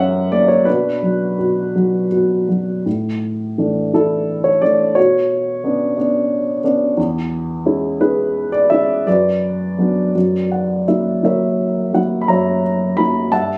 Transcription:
0.00 0.63 F#2 medium
0.00 0.64 C#4 medium
0.00 0.63 A#4 medium
0.00 0.47 C#5 medium
0.00 0.69 E5 medium
0.00 0.32 F#5 medium
0.32 0.65 A#3 soft
0.32 0.50 D5 medium
0.48 0.67 C#5 medium
0.65 1.37 B2 medium
0.65 2.08 D4 medium
0.65 2.07 F#4 soft
0.65 2.06 B4 medium
1.03 1.74 F#3 soft
1.39 2.10 B2 soft
1.75 2.47 F#3 soft
2.12 2.84 B2 soft
2.49 2.85 F#3 soft
2.86 4.93 A2 soft
3.58 3.92 E3 soft
3.58 3.93 A3 soft
3.58 3.93 D4 soft
3.94 4.60 E3 soft
3.94 4.61 A3 soft
3.94 4.61 D4 soft
3.94 4.94 E4 soft
3.94 4.47 A4 medium
4.44 4.62 C#5 medium
4.62 4.96 E3 soft
4.62 4.96 A3 soft
4.62 4.96 D4 soft
4.62 4.97 D5 medium
4.95 6.94 B2 medium
4.95 6.60 F#4 medium
4.95 6.59 C#5 medium
5.64 5.96 B3 soft
5.64 5.96 C#4 soft
5.64 5.96 D4 soft
5.97 6.62 B3 soft
5.97 6.62 C#4 soft
5.97 6.62 D4 soft
6.64 6.97 B3 soft
6.64 6.97 C#4 soft
6.64 6.97 D4 soft
6.98 9.03 E2 medium
7.65 7.99 G#3 soft
7.65 7.99 C#4 soft
7.65 8.00 E4 soft
8.00 8.69 G#3 soft
8.00 8.69 C#4 soft
8.00 8.69 E4 soft
8.00 9.04 G#4 medium
8.00 8.50 B4 medium
8.52 8.69 D5 medium
8.70 9.06 G#3 soft
8.70 9.06 C#4 soft
8.70 9.06 E4 soft
8.70 9.07 E5 medium
9.07 10.12 F#2 soft
9.07 10.85 F#4 soft
9.07 10.85 B4 medium
9.07 10.84 D5 medium
9.78 10.14 F#3 soft
9.78 10.14 B3 soft
9.78 10.15 D4 soft
10.15 12.26 F#2 soft
10.52 10.85 F#5 soft
10.88 11.21 F#3 soft
10.88 11.22 A#3 soft
10.88 11.22 E4 soft
10.88 11.21 E5 soft
11.23 11.92 F#3 soft
11.23 11.92 A#3 soft
11.23 11.92 E4 soft
11.23 12.26 A#4 soft
11.23 12.27 C#5 soft
11.23 11.97 E5 medium
11.93 12.62 F#3 soft
11.93 12.62 A#3 soft
11.93 12.62 E4 soft
11.93 12.24 F#5 medium
12.21 12.29 B5 medium
12.28 13.29 F#2 medium
12.28 13.28 C#5 medium
12.28 13.28 E5 medium
12.28 13.00 A#5 medium
12.97 13.31 F#3 soft
12.97 13.31 A#3 soft
12.97 13.31 E4 soft
12.97 13.32 B5 medium
13.32 13.58 G2 medium
13.32 13.58 E5 medium
13.32 13.58 F#5 medium
13.32 13.58 A5 medium

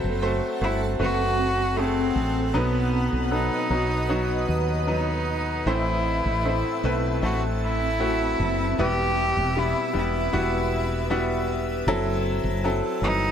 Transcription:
0.00 0.39 F#1 medium
0.00 0.57 F#3 medium
0.00 0.19 A3 medium
0.00 0.19 C4 loud
0.00 2.52 C4 medium
0.00 0.19 F#4 loud
0.00 2.51 A4 medium
0.00 0.19 C5 loud
0.00 5.63 F#5 medium
0.00 2.51 A5 medium
0.22 0.59 A3 medium
0.22 0.59 C4 medium
0.22 0.59 F#4 medium
0.22 0.59 C5 loud
0.61 0.97 G1 medium
0.61 0.98 A3 medium
0.61 0.98 C4 medium
0.61 0.81 E4 medium
0.61 0.98 F#4 medium
0.61 0.98 C5 medium
0.99 2.11 F#1 medium
0.99 1.73 A3 medium
0.99 1.73 C4 medium
0.99 1.73 F#4 medium
0.99 1.82 F#4 loud
0.99 1.73 B4 medium
1.76 2.50 A3 medium
1.76 2.50 C4 medium
1.76 2.59 C4 loud
1.76 2.50 F#4 medium
1.76 1.84 G#4 medium
1.84 2.54 A4 medium
2.15 2.51 A1 medium
2.54 3.08 B1 medium
2.54 3.66 B2 medium
2.54 3.27 F#3 medium
2.54 3.28 B3 medium
2.54 3.33 B3 medium
2.54 3.28 D#4 medium
2.54 3.28 B4 medium
2.54 5.64 B4 medium
2.54 5.64 D#5 medium
2.54 5.64 D#6 medium
3.12 3.48 B1 loud
3.31 3.68 F#3 medium
3.31 3.68 B3 medium
3.31 3.68 D#4 medium
3.31 4.46 D#4 medium
3.31 3.69 A4 medium
3.70 4.44 B1 medium
3.70 4.07 F#3 medium
3.70 4.08 B3 medium
3.70 4.08 D#4 medium
3.70 4.08 F#4 medium
4.09 4.84 F#3 medium
4.09 4.84 B3 medium
4.09 4.84 D#4 medium
4.09 4.84 F#4 medium
4.48 5.62 D#2 medium
4.87 5.63 F#3 medium
4.87 5.62 B3 medium
4.87 5.62 D#4 medium
4.87 5.71 D#4 medium
4.87 5.63 B4 medium
5.66 6.21 A1 medium
5.66 6.80 A2 medium
5.66 6.80 E3 medium
5.66 6.41 A3 medium
5.66 8.75 C4 medium
5.66 6.41 C4 medium
5.66 6.41 E4 medium
5.66 7.24 E4 medium
5.66 6.41 C5 medium
5.66 11.83 E5 medium
5.66 8.75 A5 medium
5.66 8.75 E6 loud
6.25 6.62 A1 medium
6.45 6.82 A3 medium
6.45 6.82 C4 medium
6.45 6.82 E4 medium
6.45 6.82 C5 medium
6.83 7.20 B1 medium
6.83 7.21 A3 medium
6.83 7.21 C4 medium
6.83 7.21 E4 medium
6.83 7.21 B4 medium
7.22 8.35 A1 medium
7.22 7.97 A3 medium
7.22 7.96 C4 medium
7.22 7.97 E4 medium
7.22 7.42 F#4 medium
7.22 7.97 A4 medium
7.65 8.76 E4 loud
8.00 8.74 A3 medium
8.00 8.74 C4 medium
8.00 8.74 E4 medium
8.00 8.74 F#4 medium
8.39 8.75 F#1 loud
8.77 9.32 E1 loud
8.77 9.91 B2 medium
8.77 9.52 G3 medium
8.77 9.52 B3 medium
8.77 9.52 E4 medium
8.77 9.60 G4 loud
8.77 11.84 B4 medium
8.77 9.53 B4 loud
8.77 13.31 E6 medium
9.37 9.73 E1 medium
9.56 9.92 G3 medium
9.56 9.92 B3 medium
9.56 9.92 E4 medium
9.56 9.96 E4 loud
9.56 9.92 G4 medium
9.93 10.31 E1 medium
9.93 10.31 G3 medium
9.93 10.31 B3 medium
9.93 10.31 E4 medium
9.93 10.31 G4 medium
9.98 11.47 E4 medium
10.33 11.83 E1 loud
10.33 11.06 G3 medium
10.33 11.06 B3 medium
10.33 11.07 E4 medium
10.33 11.07 F#4 loud
11.10 11.83 G3 medium
11.10 11.84 B3 medium
11.10 11.84 E4 medium
11.10 11.84 F#4 medium
11.86 12.41 F#1 medium
11.86 12.61 F#3 loud
11.86 13.31 C4 medium
11.86 12.61 C4 loud
11.86 12.61 E4 loud
11.86 12.61 A4 loud
11.86 13.31 F#5 medium
11.86 13.31 A5 medium
12.44 12.80 F#1 loud
12.64 13.01 F#3 medium
12.64 13.01 C4 medium
12.64 13.01 E4 medium
12.64 13.01 A4 loud
13.01 13.31 G1 medium
13.01 13.31 E3 medium
13.01 13.31 F#3 medium
13.01 13.31 C4 medium
13.01 13.31 D#4 loud
13.01 13.31 B4 medium

